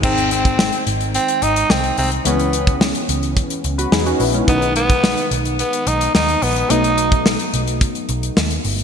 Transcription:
0.02 G#1 D#3 G#3 C4 D#4, kick, crash
0.18 closed hi-hat
0.31 C4, closed hi-hat
0.45 kick, closed hi-hat
0.59 snare
0.73 closed hi-hat
0.87 G#1, closed hi-hat
1.01 closed hi-hat
1.14 C4, closed hi-hat
1.28 closed hi-hat
1.42 G#1 D#4, closed hi-hat
1.56 closed hi-hat
1.70 C2 C4, snare
1.84 closed hi-hat
1.97 C2 C4, open hi-hat
2.12 closed hi-hat
2.24 C#2 E3 G#3 B3 C#4, closed hi-hat
2.39 closed hi-hat
2.53 closed hi-hat
2.67 kick, closed hi-hat
2.81 snare
2.95 closed hi-hat
3.09 C#2, closed hi-hat
3.23 closed hi-hat
3.37 kick, closed hi-hat
3.50 closed hi-hat
3.64 C#2, closed hi-hat
3.78 F#4 B4, closed hi-hat
3.92 E2 D#4 G#4, snare
4.06 C#4 F#4, closed hi-hat
4.20 A#1 B3 E4, open hi-hat
4.34 G#3 C#4, closed hi-hat
4.47 B1 D#3 G#3 B3 D#4, kick, closed hi-hat
4.62 closed hi-hat
4.76 B3, closed hi-hat
4.90 kick, closed hi-hat
5.04 snare
5.17 closed hi-hat
5.31 B1, closed hi-hat
5.45 closed hi-hat
5.59 B3, closed hi-hat
5.73 closed hi-hat
5.87 B1 D#4, closed hi-hat
6.01 closed hi-hat
6.15 D#2 D#4, snare
6.28 closed hi-hat
6.42 A#1 B3, open hi-hat
6.56 closed hi-hat
6.69 B1 F#3 A3 B3 D#4, closed hi-hat
6.84 closed hi-hat
6.98 closed hi-hat
7.12 kick, closed hi-hat
7.26 snare
7.39 closed hi-hat
7.54 B1, closed hi-hat
7.67 closed hi-hat
7.81 kick, closed hi-hat
7.95 closed hi-hat
8.09 B1, closed hi-hat
8.23 closed hi-hat
8.37 D#2, snare
8.51 closed hi-hat
8.64 G1, open hi-hat
8.79 closed hi-hat

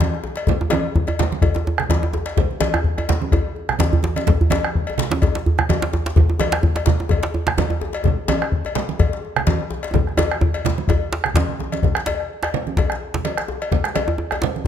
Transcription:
0.00 bombo low, cowbell, djembe slap, high conga
0.15 high conga
0.24 djembe tone
0.36 cowbell, djembe slap
0.47 bombo low, djembe tone, djembe bass, low conga
0.61 djembe tone
0.70 bombo rim, cowbell, djembe slap, djembe tone, high conga
0.95 bombo low, djembe slap, djembe tone
1.07 cowbell, djembe tone
1.19 djembe slap, djembe tone, low conga
1.32 djembe slap, high conga
1.42 bombo low, cowbell, djembe tone, djembe bass
1.55 djembe slap, djembe tone, high conga
1.66 djembe slap, djembe tone
1.78 bombo rim, djembe tone, low conga
1.89 bombo low, cowbell, djembe slap, high conga, djembe tone
2.03 djembe tone, high conga
2.13 djembe tone
2.26 cowbell, djembe slap
2.37 bombo low, high conga, low conga, djembe bass
2.51 high conga
2.60 bombo rim, cowbell, djembe slap, djembe tone, high conga
2.74 bombo rim, djembe tone
2.84 bombo low, djembe slap
2.98 bombo rim, cowbell, djembe tone
3.09 djembe slap, high conga, djembe tone, low conga
3.21 high conga
3.32 bombo low, cowbell, djembe tone, djembe bass
3.56 djembe slap, high conga
3.69 bombo rim, djembe tone, high conga, low conga
3.79 bombo rim, bombo low, cowbell, djembe slap, high conga
3.92 djembe slap, low conga, djembe bass
4.03 djembe slap, high conga, djembe tone
4.16 cowbell, djembe slap, high conga
4.27 bombo low, djembe slap, low conga, djembe bass
4.41 djembe bass
4.50 bombo rim, cowbell, djembe slap, high conga, djembe tone
4.65 bombo rim
4.75 bombo low, djembe slap
4.87 cowbell, djembe tone
4.98 djembe slap, low conga
5.11 djembe slap, high conga
5.22 bombo low, cowbell, djembe tone, djembe bass
5.35 djembe slap, high conga
5.46 djembe slap, djembe bass
5.58 bombo rim, djembe tone, low conga
5.69 bombo low, cowbell, djembe slap, high conga
5.82 djembe slap, high conga
5.93 djembe tone
6.06 djembe slap
6.16 bombo low, djembe bass, low conga
6.30 djembe tone
6.39 bombo rim, cowbell, djembe slap, djembe tone, high conga
6.52 bombo rim, djembe slap
6.63 bombo low, djembe slap, djembe tone
6.76 cowbell, djembe slap, djembe tone
6.86 djembe slap, djembe bass, low conga
6.99 djembe slap, djembe tone
7.09 bombo low, cowbell, djembe tone, djembe bass
7.23 djembe slap, high conga
7.34 djembe slap, djembe tone
7.47 bombo rim, djembe slap, djembe tone, low conga
7.58 bombo low, cowbell, djembe slap, high conga, djembe bass
7.70 djembe tone, high conga
7.81 djembe tone
7.93 cowbell, djembe slap
8.04 bombo low, djembe bass, low conga
8.28 bombo rim, cowbell, djembe slap, djembe tone, high conga
8.42 bombo rim
8.52 bombo low, djembe slap
8.65 cowbell, djembe tone
8.75 djembe slap, low conga
8.89 djembe slap, high conga
8.99 bombo low, cowbell, djembe tone, djembe bass
9.13 djembe slap, high conga
9.25 djembe slap
9.36 bombo rim, djembe tone, low conga
9.47 bombo low, cowbell, djembe slap, high conga
9.59 high conga
9.70 djembe tone
9.83 cowbell, djembe slap
9.94 bombo rim, bombo low, djembe tone, high conga, low conga, djembe bass
10.07 bombo rim, djembe slap
10.17 bombo rim, cowbell, djembe slap, djembe tone, high conga
10.19 djembe tone
10.31 bombo rim, djembe slap
10.41 bombo low, djembe tone
10.54 cowbell, high conga, djembe tone
10.65 djembe slap, djembe tone, low conga
10.78 high conga
10.88 bombo low, cowbell, djembe tone, djembe bass
11.12 djembe slap
11.24 bombo rim, djembe slap, djembe tone, low conga
11.34 bombo rim, bombo low, cowbell, djembe slap, high conga
11.49 low conga
11.59 high conga, djembe tone
11.72 cowbell, djembe slap, high conga
11.83 bombo low, djembe slap, high conga, low conga, djembe bass
11.95 bombo rim, djembe slap
12.06 bombo rim, cowbell, djembe slap, djembe tone
12.20 bombo rim
12.43 bombo rim, cowbell, djembe slap
12.44 djembe slap
12.54 high conga, low conga
12.67 djembe slap, high conga
12.77 bombo low, cowbell, djembe slap, djembe tone, djembe bass
12.90 bombo rim, djembe slap
13.14 djembe slap, djembe tone, low conga
13.25 cowbell, djembe slap, high conga
13.38 bombo rim, djembe slap
13.48 djembe tone
13.62 cowbell, high conga
13.72 bombo low, djembe slap, high conga, djembe bass, low conga
13.84 bombo rim, djembe slap
13.95 bombo rim, cowbell, high conga, djembe tone
14.07 bombo rim, djembe tone
14.18 djembe tone
14.31 bombo rim, cowbell, djembe slap, djembe tone
14.42 djembe slap, high conga, low conga
14.55 djembe slap, high conga

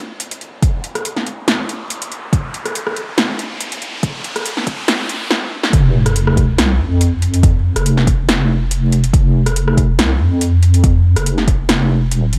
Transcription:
Already playing: riser
0.20 closed hi-hat
0.31 closed hi-hat
0.41 closed hi-hat
0.62 kick, closed hi-hat
0.84 closed hi-hat
0.95 cross-stick, closed hi-hat
1.05 closed hi-hat
1.17 snare
1.27 closed hi-hat
1.48 snare, closed hi-hat
1.69 closed hi-hat
1.90 closed hi-hat
2.02 closed hi-hat
2.12 closed hi-hat
2.33 kick, closed hi-hat
2.54 closed hi-hat
2.65 cross-stick, closed hi-hat
2.75 closed hi-hat
2.87 cross-stick
2.97 closed hi-hat
3.18 snare, closed hi-hat
3.39 closed hi-hat
3.61 closed hi-hat
3.72 closed hi-hat
3.82 closed hi-hat
4.03 kick, closed hi-hat
4.24 closed hi-hat
4.36 cross-stick, closed hi-hat
4.46 closed hi-hat
4.57 snare
4.67 kick, closed hi-hat
4.88 snare, closed hi-hat
5.09 closed hi-hat
5.31 snare
5.63 snare
5.73 F1, kick, closed hi-hat, sub drop
6.06 cross-stick, closed hi-hat
6.16 closed hi-hat
6.27 cross-stick
6.37 kick, closed hi-hat
6.58 C2, snare, closed hi-hat
6.79 F2
7.01 closed hi-hat
7.22 closed hi-hat
7.34 closed hi-hat
7.43 kick, closed hi-hat
7.76 F1, cross-stick, closed hi-hat
7.86 closed hi-hat
7.97 snare
8.07 kick, closed hi-hat
8.28 F1, snare, closed hi-hat
8.71 closed hi-hat
8.92 closed hi-hat
9.04 closed hi-hat
9.13 F1, kick, closed hi-hat
9.46 cross-stick, closed hi-hat
9.56 closed hi-hat
9.68 cross-stick
9.77 kick, closed hi-hat
9.98 C2, snare, closed hi-hat
10.20 F2
10.41 closed hi-hat
10.63 closed hi-hat
10.74 closed hi-hat
10.84 kick, closed hi-hat
11.16 F1, cross-stick, closed hi-hat
11.26 closed hi-hat
11.38 snare
11.48 kick, closed hi-hat
11.69 F1, snare, closed hi-hat
12.11 D#1, closed hi-hat
12.33 G#1, closed hi-hat

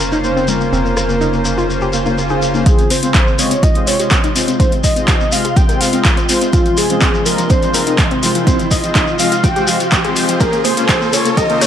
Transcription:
Already playing: F1 C#3 A#3 C#4 F4 A#4 C5
0.00 A#3
0.12 D#4, high conga, shekere
0.24 A#3 C5, shekere
0.36 C4, high conga, shekere
0.48 A#3 A#4, low conga, shekere
0.61 A#3, shekere
0.73 F1 C4, shekere
0.85 A#3, shekere
0.97 A#3, cross-stick, shekere
1.09 A#3, shekere
1.21 D#4, shekere
1.33 A#3, shekere
1.45 A#3, shekere
1.58 F4, shekere
1.69 A#3, swell, shekere
1.81 G4, shekere
1.93 A#3, shekere
2.06 A#3, high conga, shekere
2.18 A#3, shekere
2.29 G#4, high conga, shekere
2.42 A#3, shekere
2.54 A#3, high conga, shekere
2.66 C3 G#3 C4 F4 G#4 C5 C6, kick, closed hi-hat, riser, shekere
2.79 C4, closed hi-hat, shekere
2.90 C4 C5, open hi-hat, shekere
3.03 G#3 C4 F4 C5, closed hi-hat, shekere
3.15 F4, kick, clap, closed hi-hat, shekere
3.27 C4, shekere
3.39 G#3 C4 F4 C#5 D#5, open hi-hat, shekere
3.51 C4, closed hi-hat, shekere
3.63 F4 D#5, kick, closed hi-hat, shekere
3.74 G#3 C4 F4 C5, closed hi-hat, shekere
3.87 C4 C#5, open hi-hat, shekere
3.99 G#3 C4 F4 G4 D#5, closed hi-hat, shekere
4.11 C4, kick, clap, closed hi-hat, shekere
4.24 D#4, closed hi-hat, shekere
4.36 G#3 C4 F4 C5, open hi-hat, shekere
4.48 C4, closed hi-hat, shekere
4.60 G#3 C4 D#4 F4 C5, kick, closed hi-hat, shekere
4.72 C4, closed hi-hat, shekere
4.84 D#5, kick, open hi-hat, shekere
4.96 G#3 C4 F4 C5, closed hi-hat, shekere
5.08 G4, kick, clap, closed hi-hat, shekere
5.20 C4, shekere
5.32 G#3 C4 F4 D#5 F5, open hi-hat, shekere
5.44 G#4, closed hi-hat, shekere
5.56 C4 G5, kick, closed hi-hat, shekere
5.69 G#3 C4 F4 A#4 C5, closed hi-hat, shekere
5.81 C4 F5, open hi-hat, shekere
5.93 G#3 C4 F4 D#5, closed hi-hat, shekere
6.05 C4, kick, clap, closed hi-hat, shekere
6.17 C5, closed hi-hat, shekere
6.29 G#3 C4 F4 C5, open hi-hat, shekere
6.41 C4, closed hi-hat, shekere
6.53 G#3 C4 F4 C5, kick, closed hi-hat, shekere
6.66 F3, closed hi-hat, shekere
6.77 F3 G#4, open hi-hat, shekere
6.89 F3 G#3 C4 F4 C5, closed hi-hat, shekere
7.01 C4, kick, clap, closed hi-hat, shekere
7.14 F3, shekere
7.25 F3 G#3 C4 F4 A#4 D#5, open hi-hat, shekere
7.38 F3, closed hi-hat, shekere
7.49 C4 C5, kick, closed hi-hat, shekere
7.62 F3 G#3 C4 F4 C5, closed hi-hat, shekere
7.74 F3 A#4, open hi-hat, shekere
7.86 G#3 C4 D#4 F4 D#5, closed hi-hat, shekere
7.98 F3, kick, clap, closed hi-hat, shekere
8.10 C4, closed hi-hat, shekere
8.23 F3 G#3 C4 F4 C5, open hi-hat, shekere
8.35 F3, closed hi-hat, shekere
8.47 G#3 C4 F4 C5, kick, closed hi-hat, shekere
8.59 F3, closed hi-hat, shekere
8.71 F3 D#5, kick, open hi-hat, shekere
8.83 F3 G#3 C4 F4 C5, closed hi-hat, shekere
8.95 D#4, kick, clap, closed hi-hat, shekere
9.07 F3, shekere
9.19 F3 G#3 C4 F4 D#5 F5, open hi-hat, shekere
9.32 F4, closed hi-hat, shekere
9.44 F3 G5, kick, closed hi-hat, shekere
9.56 G#3 C4 F4 G4 C5, closed hi-hat, shekere
9.67 F3 F5, open hi-hat, shekere
9.80 F3, closed hi-hat, shekere
9.92 F3, kick, clap, closed hi-hat, shekere
10.04 G#3 C4 F4 G#4 C5, closed hi-hat, shekere
10.16 F3, open hi-hat, shekere
10.28 F3, closed hi-hat, shekere
10.40 F2 C#3 A#3 C#4 F4 A#4 C5, kick, closed hi-hat, shekere
10.53 A#3, closed hi-hat, shekere
10.64 A#3 C5, open hi-hat, shekere
10.77 A#3 C#4 F4 C5, closed hi-hat, shekere
10.89 G4, kick, clap, closed hi-hat, shekere
11.01 A#3, shekere
11.13 A#3 C#4 F4 C#5, open hi-hat, shekere
11.25 A#3, closed hi-hat, shekere
11.37 G4 D#5, kick, closed hi-hat, shekere
11.49 A#3 C#4 F4 C5, closed hi-hat, shekere
11.61 A#3 C#5, cross-stick, open hi-hat, shekere

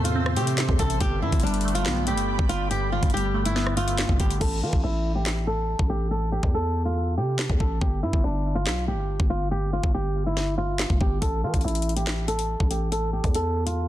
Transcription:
Already playing: E2 A2 C3 E3 A3 C4 A4 C5 E5 C6
0.04 F4, closed hi-hat
0.15 C4
0.26 cross-stick
0.36 C3 A3 G4, closed hi-hat
0.47 closed hi-hat
0.58 snare, clap, closed hi-hat
0.69 E2, kick
0.79 A1 C3 A4, kick, closed hi-hat
0.90 closed hi-hat
1.00 G1 G2 G4 D5 G5 B5, kick, closed hi-hat
1.22 G2 D3 E4
1.32 G1, kick, closed hi-hat
1.40 G1 G3 D4, closed hi-hat
1.47 closed hi-hat
1.54 closed hi-hat
1.61 closed hi-hat
1.65 A3, closed hi-hat
1.75 F4, closed hi-hat
1.86 B1 B3, snare, clap
2.07 A3 G4, closed hi-hat
2.12 G1
2.17 closed hi-hat
2.39 G1, kick
2.49 D3 F4, closed hi-hat
2.71 G2 G4, closed hi-hat
2.92 D3 F4
3.03 G1, kick, closed hi-hat
3.10 G3, closed hi-hat
3.14 G4, closed hi-hat
3.34 A3
3.45 E4, closed hi-hat
3.56 B3, snare
3.67 cross-stick
3.77 A3 F4, closed hi-hat
3.88 closed hi-hat
3.98 snare, clap, closed hi-hat
4.09 F1, kick
4.19 G1 D3 G4, kick, closed hi-hat
4.30 closed hi-hat
4.40 A1 A4, kick, crash
4.62 E3 F4
4.73 A1, kick
4.84 A1 E4
5.15 G4
5.26 snare, clap
5.47 A4
5.79 A1, kick
5.90 G4
6.11 A4
6.32 G4
6.43 E2, kick
6.54 A4
6.85 F4
7.18 C3 G4
7.39 snare, clap
7.50 E2, kick
7.60 A1 A4, kick
7.81 G1 G4, kick
8.03 G2 E4
8.13 G1, kick
8.24 G1 D4
8.55 F4
8.67 B1, snare, clap
8.88 G4
8.93 G1
9.20 G1, kick
9.30 F4
9.51 G4
9.73 F4
9.84 G1, kick
9.94 G4
10.26 E4
10.37 snare
10.58 F4
10.79 snare, clap
10.90 F1, kick
11.01 G1 G4, kick
11.21 A1 A4, kick, closed hi-hat
11.43 E3 F4
11.54 A1, kick, closed hi-hat
11.61 A1 E4, closed hi-hat
11.68 closed hi-hat
11.75 closed hi-hat
11.82 closed hi-hat
11.89 closed hi-hat
11.96 G4, closed hi-hat
12.07 snare, clap
12.28 A4, closed hi-hat
12.39 closed hi-hat
12.60 A1, kick
12.71 G4, closed hi-hat
12.92 A4, closed hi-hat
13.13 G4
13.24 E2, kick, closed hi-hat
13.35 A4, closed hi-hat
13.66 F4, closed hi-hat

